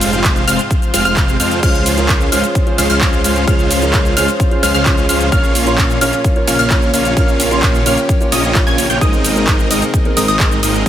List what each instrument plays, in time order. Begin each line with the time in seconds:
Already playing: detuned saw bass F1, analog synth pad G#2 C3 F3 F4 C5, supersaw synth G#3 C4 F4 C5 F5, synth pluck F6
0.01 open hi-hat, ride, cabasa
0.13 closed hi-hat, cabasa
0.24 kick, clap, closed hi-hat, cabasa
0.36 closed hi-hat, cabasa
0.47 detuned saw bass F1, supersaw synth G#3 C4 F4 C5 F5, synth pluck F6, open hi-hat, ride, cabasa
0.59 closed hi-hat, cabasa
0.71 kick, closed hi-hat, cabasa
0.82 closed hi-hat, cabasa
0.94 detuned saw bass F1, supersaw synth G#3 C4 F4 C5 F5, synth pluck F6, open hi-hat, ride, cabasa
1.05 detuned saw bass F1, supersaw synth G#3 C4 F4 C5 F5, synth pluck F6, closed hi-hat, cabasa
1.17 kick, clap, closed hi-hat, cabasa
1.28 closed hi-hat, cabasa
1.40 detuned saw bass F2, supersaw synth G#3 C4 F4 C5 F5, synth pluck F6, open hi-hat, ride, cabasa
1.51 closed hi-hat, cabasa
1.62 detuned saw bass C#2, analog synth pad C#3 G#3 F4, supersaw synth G#3 C#4 F4 C5 F5, grand piano C#4 F4 G#4 C5, synth pluck F6, kick, closed hi-hat, crash, cabasa
1.74 closed hi-hat, cabasa
1.86 open hi-hat, ride, cabasa
1.97 grand piano C#4 F4 G#4 A#4, closed hi-hat, cabasa
2.09 kick, clap, closed hi-hat, cabasa
2.21 closed hi-hat, cabasa
2.32 detuned saw bass C#2, supersaw synth G#3 C#4 F4 C5 F5, grand piano C#4 F4 G#4 C5, synth pluck F6, open hi-hat, ride, cabasa
2.44 closed hi-hat, cabasa
2.55 kick, closed hi-hat, cabasa
2.66 grand piano C#4 F4 G#4 C5, closed hi-hat
2.78 detuned saw bass C#2, supersaw synth G#3 C#4 F4 C5 F5, synth pluck F6, open hi-hat, ride, cabasa
2.90 detuned saw bass C#2, supersaw synth G#3 C#4 F4 C5 F5, synth pluck F6, closed hi-hat, cabasa
3.01 grand piano C#4 F4 G#4 C5, kick, clap, closed hi-hat, cabasa
3.13 closed hi-hat, cabasa
3.24 detuned saw bass C#2, supersaw synth G#3 C#4 F4 C5 F5, synth pluck F6, open hi-hat, ride, cabasa
3.36 closed hi-hat, cabasa
3.47 detuned saw bass C#2, supersaw synth G#3 C#4 F4 C5 F5, grand piano C#4 F4 G#4 C5, synth pluck F6, kick, closed hi-hat, cabasa
3.59 closed hi-hat, cabasa
3.71 open hi-hat, ride, cabasa
3.82 grand piano C#4 F4 G#4 A#4, closed hi-hat, cabasa
3.93 kick, clap, closed hi-hat, cabasa
4.05 closed hi-hat, cabasa
4.16 detuned saw bass C#2, supersaw synth G#3 C#4 F4 C5 F5, grand piano C#4 F4 G#4 C5, synth pluck F6, open hi-hat, ride, cabasa
4.28 closed hi-hat, cabasa
4.40 kick, closed hi-hat, cabasa
4.51 grand piano C#4 F4 G#4 C5, closed hi-hat
4.63 detuned saw bass C#2, supersaw synth G#3 C#4 F4 C5 F5, synth pluck F6, open hi-hat, ride, cabasa
4.74 detuned saw bass C#2, supersaw synth G#3 C#4 F4 C5 F5, synth pluck F6, closed hi-hat, cabasa
4.85 grand piano C#4 F4 G#4 C5, kick, clap, closed hi-hat, cabasa
4.97 closed hi-hat, cabasa
5.09 detuned saw bass C#2, supersaw synth G#3 C#4 F4 C5 F5, synth pluck F6, open hi-hat, ride, cabasa
5.21 closed hi-hat, cabasa
5.32 detuned saw bass A#1, analog synth pad A#2 C#4, supersaw synth A#3 C#4 F4 C#5 F5, grand piano C#4 F4 A#4 C#5, synth pluck F6, kick, closed hi-hat, cabasa
5.44 closed hi-hat, cabasa
5.55 open hi-hat, ride, cabasa
5.66 grand piano C#4 F4 A#4 C6, closed hi-hat, cabasa
5.78 kick, clap, closed hi-hat, cabasa
5.90 closed hi-hat, cabasa
6.01 detuned saw bass A#1, supersaw synth A#3 C#4 F4 C#5 F5, grand piano C#4 F4 A#4 C#5, synth pluck F6, open hi-hat, ride, cabasa
6.13 closed hi-hat, cabasa
6.24 kick, closed hi-hat, cabasa
6.35 grand piano C#4 F4 A#4 C#5, closed hi-hat
6.47 detuned saw bass A#1, supersaw synth A#3 C#4 F4 C#5 F5, synth pluck F6, open hi-hat, ride, cabasa
6.59 detuned saw bass A#1, supersaw synth A#3 C#4 F4 C#5 F5, synth pluck F6, closed hi-hat, cabasa
6.70 grand piano C#4 F4 A#4 C#5, kick, clap, closed hi-hat, cabasa
6.82 closed hi-hat, cabasa
6.94 detuned saw bass A#1, supersaw synth A#3 C#4 F4 C#5 F5, synth pluck F6, open hi-hat, ride, cabasa
7.05 closed hi-hat, cabasa
7.16 detuned saw bass A#1, supersaw synth A#3 C#4 F4 C#5 F5, grand piano C#4 F4 A#4 C#5, analog synth pad G4, synth pluck F6, kick, closed hi-hat, cabasa
7.28 closed hi-hat, cabasa
7.40 open hi-hat, ride, cabasa
7.51 grand piano C#4 F4 A#4 C6, closed hi-hat, cabasa
7.63 kick, clap, closed hi-hat, cabasa
7.74 closed hi-hat, cabasa
7.85 detuned saw bass A#1, supersaw synth A#3 C#4 F4 C#5 F5, grand piano C#4 F4 A#4 C#5, synth pluck F6, open hi-hat, ride, cabasa
7.97 closed hi-hat, cabasa
8.09 kick, closed hi-hat, cabasa
8.20 grand piano C#4 F4 A#4 C#5, closed hi-hat, cabasa
8.32 detuned saw bass A#1, supersaw synth A#3 C#4 F4 C#5 D#5, synth pluck D#6, open hi-hat, ride, cabasa
8.44 closed hi-hat, cabasa
8.55 grand piano C#4 F4 A#4 C#5, kick, clap, closed hi-hat, cabasa
8.67 detuned saw bass A#1, supersaw synth A#3 C#4 F4 C#5 G#5, synth pluck G#6, closed hi-hat, cabasa
8.78 open hi-hat, ride, cabasa
8.90 detuned saw bass A#1, supersaw synth A#3 C#4 F4 C#5 G5, synth pluck G6, closed hi-hat, cabasa
9.01 detuned saw bass G#1, analog synth pad C3 D#3 G#3 A#3 D#4, supersaw synth G#3 C4 D#4 A#4 D#5, grand piano C4 D#4 G#4 A#4, synth pluck D#6, kick, closed hi-hat, cabasa
9.13 closed hi-hat, cabasa
9.24 open hi-hat, ride, cabasa
9.35 grand piano C4 D#4 G#4 A#4, closed hi-hat, cabasa
9.47 kick, clap, closed hi-hat, cabasa
9.59 closed hi-hat, cabasa
9.70 detuned saw bass G#1, supersaw synth G#3 C4 D#4 A#4 D#5, grand piano C4 D#4 G#4 A#4, synth pluck D#6, open hi-hat, ride, cabasa
9.82 closed hi-hat, cabasa
9.94 kick, closed hi-hat, cabasa
10.05 grand piano C4 D#4 G#4 A#4, closed hi-hat
10.17 detuned saw bass G#1, supersaw synth G#3 C4 D#4 A#4 D#5, synth pluck D#6, open hi-hat, ride, cabasa
10.28 detuned saw bass G#1, supersaw synth G#3 C4 D#4 A#4 D#5, synth pluck D#6, closed hi-hat, cabasa
10.39 grand piano C4 D#4 G#4 A#4, kick, clap, closed hi-hat, cabasa
10.51 closed hi-hat, cabasa
10.63 detuned saw bass G#1, supersaw synth G#3 C4 D#4 A#4 D#5, synth pluck D#6, open hi-hat, ride, cabasa
10.74 closed hi-hat, cabasa
10.85 grand piano C4 D#4